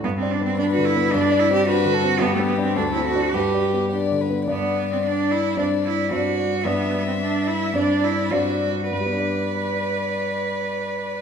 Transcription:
X:1
M:2/4
L:1/16
Q:1/4=108
K:G
V:1 name="Violin"
z4 B4 | d4 B2 A2 | G4 A4 | B4 d2 B2 |
d8 | d8 | e8 | d4 d2 z2 |
d8- | d8 |]
V:2 name="Cello"
B, C D C D F E2 | D2 E G F4 | B, A, B, C D E F2 | G4 z4 |
B,3 C D2 E2 | D2 E2 F4 | B,3 C D2 E2 | D2 E2 F4 |
B8- | B8 |]
V:3 name="Grand piano"
(3G,,2 d2 B,2 (3D2 D,2 B,2 | (3G,,2 d2 C2 (3D2 D,2 C2 | (3G,,2 B,2 [Dd]2 (3D,,2 C2 [Dd]2 | (3G,,2 d2 B,2 (3D2 D,2 B,2 |
[G,,B,Dd]8 | [G,,CDd]4 [G,,CDd]4 | [G,,B,Dd]8 | [G,,CDd]4 [G,,CDd]4 |
[G,,G,B,Dd]8- | [G,,G,B,Dd]8 |]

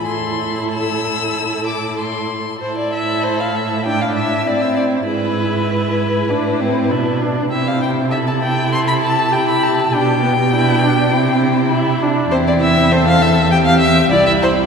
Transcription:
X:1
M:4/4
L:1/16
Q:1/4=99
K:Am
V:1 name="Violin"
A12- A2 z2 | c d e2 c f e2 g f e2 d e d2 | B12- B2 z2 | e f g2 e a g2 c' b a2 g b a2 |
g12- g2 z2 | [K:C] c d e2 c f e2 g f e2 d e c2 |]
V:2 name="Violin"
c'4 e'6 d'2 c'4 | A8 E4 E4 | ^G4 G4 E4 D4 | E4 A8 G4 |
G4 D4 E8 | [K:C] E4 A4 G4 G4 |]
V:3 name="Viola"
E12- E2 z2 | E8 D4 C4 | E8 D2 C2 E2 D2 | C4 E8 E4 |
D2 B,2 E2 D2 C4 E2 D2 | [K:C] C8 C4 E4 |]
V:4 name="Cello" clef=bass
A,,12- A,,2 z2 | A,,16 | ^G,,8 A,,4 B,,4 | C,16 |
B,,8 C,8 | [K:C] E,,12 C,,4 |]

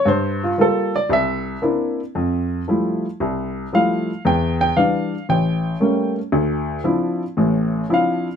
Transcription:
X:1
M:4/4
L:1/8
Q:"Swing" 1/4=115
K:F
V:1 name="Grand piano"
c F A d e2 z2 | z6 f2 | g g f2 g3 z | z6 f2 |]
V:2 name="Grand piano"
G,,2 [G,B,F] z C,,2 [B,CDE] z | F,,2 [F,G,A,E] z C,,2 [F,G,A,E] z | E,,2 [E,G,D] z A,,,2 [G,A,B,^C] z | D,,2 [F,CDE] z [A,,,A,,]2 [F,CDE] z |]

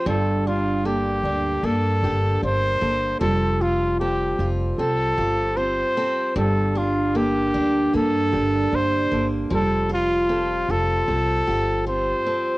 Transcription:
X:1
M:4/4
L:1/8
Q:"Swing 16ths" 1/4=76
K:Gm
V:1 name="Trumpet"
A F G2 A2 c2 | A F G z A2 c2 | A F G2 A2 c z | A F2 A3 c2 |]
V:2 name="Nylon-string guitar"
G, D A D A D B, A | G, F A F A F C A | G, D A D A D B, A | G, F A F A F C A |]
V:3 name="Steel-string acoustic guitar"
G,, D B, D B, G D B, | F, F C F C G F C | G,, D B, D B, G D B, | F, F C F C G F C |]
V:4 name="Upright bass" clef=bass
G,,,3 D,, G,, G,,, G,,, G,,, | F,,,3 F,,, C,, G,,,2 z | G,,,3 D,, G,, G,,, G,,, G,,, | F,,,3 F,,, C,, G,,,2 z |]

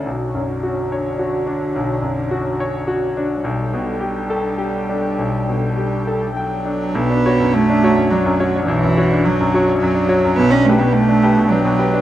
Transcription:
X:1
M:3/4
L:1/16
Q:1/4=106
K:Bm
V:1 name="Analog synth pad"
[DFc]12- | [DFc]12 | [DAg]12- | [DAg]12 |
[DFc]12- | [DFc]12 | [DBg]12 |]
V:2 name="Grand piano"
B,,,2 F,,2 F2 c2 F2 D2 | B,,,2 F,,2 F2 c2 F2 D2 | B,,,2 B,,2 G2 A2 G2 D2 | B,,,2 B,,2 G2 A2 g2 D2 |
B,,, D [Fc] F,,2 D [Fc] F,, D F,, [Fc] D | B,,, F,, [Fc] D2 F,, [Fc] D F,, D [Fc] F,, | B,,, D [GB] B,,2 D [GB] B,, D B,, [GB] D |]
V:3 name="Cello" clef=bass
D,12- | D,12 | G,12- | G,8 F,4 |
B,4 A,4 F,4 | E,4 F,4 F,4 | B, C A, B, A,4 F,4 |]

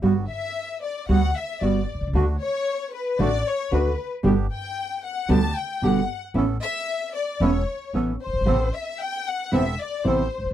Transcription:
X:1
M:4/4
L:1/16
Q:1/4=114
K:Glyd
V:1 name="Violin section"
z2 e4 d2 f2 e2 d3 z | z2 c4 B2 d2 c2 B3 z | z2 g4 f2 a2 g2 f3 z | z2 e4 d2 c4 z2 =c2- |
=c2 e2 g2 f2 e2 d2 c3 z |]
V:2 name="Bandoneon"
[G,B,F]2 z6 [G,B,F]2 z2 [G,B,F]2 z2 | [A,DF]2 z6 [A,DF]2 z2 [A,DF]2 z2 | [B,DG]2 z6 [B,DG]2 z2 [B,DG]2 z2 | [B,CA]2 z6 [B,CA]2 z2 [B,CA]2 z2 |
[B,=CA]2 z6 [B,CA]2 z2 [B,CA]2 z2 |]
V:3 name="Nylon-string guitar"
[G,B,F]2 z6 [G,B,F]2 z2 [G,B,F]2 z2 | [D,A,DF]2 z6 [D,A,DF]2 z2 [D,A,DF]2 z2 | [B,,D,G,B,G]2 z6 [B,,D,G,B,G]2 z2 [B,,D,G,B,G]2 z2 | [E,B,CE]2 z6 [E,B,CE]2 z2 [E,B,CE]2 z2 |
[=C,E,B,=CE]2 z6 [C,E,B,CE]2 z2 [C,E,B,CE]2 z2 |]
V:4 name="Upright bass" clef=bass
G,,,3/2 z6 z/2 D,,3/2 z2 z/2 G,,,3/2 z B,,,/2 =C,,/2 ^C,,/2 | D,,3/2 z6 z/2 A,,,3/2 z2 z/2 D,,3/2 z2 z/2 | G,,,3/2 z6 z/2 D,,3/2 z2 z/2 G,,,3/2 z2 z/2 | A,,,3/2 z6 z/2 E,,,3/2 z2 z/2 A,,,3/2 z F,,,/2 G,,,/2 ^G,,,/2 |
A,,,3/2 z6 z/2 E,,,3/2 z2 z/2 A,,,3/2 z ^G,,,/2 A,,,/2 z/2 |]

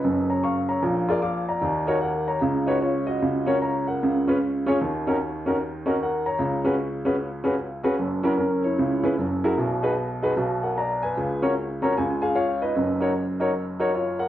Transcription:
X:1
M:4/4
L:1/8
Q:"Swing" 1/4=151
K:F#
V:1 name="Upright piano"
[DB] [ca] [ec'] [ca]2 [EGA=d] [e=d'] [da]- | [=da] [^DFAc] [Af] [ca]2 [DFBc] [Ec] [F^d]- | [Fd] [CFAc] [ca] [Af]2 [CEGB] z [CEGc] | z [CDFA] z [CDFA] z [CDFA] [Af] [ca]- |
[ca] [CFGB] z [CFGB] z [CFGB] z [CFGB] | z [C=EFA] [CA] [Ec]2 [CEGB] z [EFGA] | z [DFGB] z [DFGB] z [Af] [=da] [Bg]- | [Bg] [CFAc] z [CFAca] g [Geg] [Ece] [DBd]- |
[DBd] [DFAc] z [DFAc] z [DFAc] [Ec] [Af] |]
V:2 name="Upright piano" clef=bass
[F,,,F,,]4 [A,,,A,,]4 | [D,,D,]4 [C,,C,]4 | [C,,C,]4 [C,,C,]4 | [D,,D,]8 |
[C,,C,]8 | [F,,,F,,]4 [C,,C,]2 [F,,,F,,]2 | [B,,,B,,]4 [B,,,B,,]4 | [C,,C,]4 [C,,C,]4 |
[F,,,F,,]8 |]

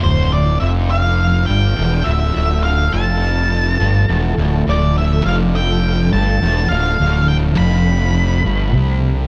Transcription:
X:1
M:4/4
L:1/8
Q:1/4=103
K:Ddor
V:1 name="Lead electric guitar"
c d e f2 g2 e- | e f a4- a z | d e f g2 a2 f- | f g b4- b z |]
V:2 name="String section"
[F,A,DFA]8- | [F,A,DFA]8- | [F,A,DFA]8- | [F,A,DFA]8 |]
V:3 name="Overdriven electric guitar" clef=bass
D,,2 F,,3 G,, E,, D,, | D,,2 F,,3 G,, E,, D,, | D,,2 F,,3 G,, E,, D,, | D,,2 F,,3 G,, C,2 |]
V:4 name="Fingered electric bass" clef=bass
D,,,2 F,,,3 G,,, E,,, D,,, | D,,,2 F,,,3 G,,, E,,, D,,, | D,,,2 F,,,3 G,,, E,,, D,,, | D,,,2 F,,,3 G,,, C,,2 |]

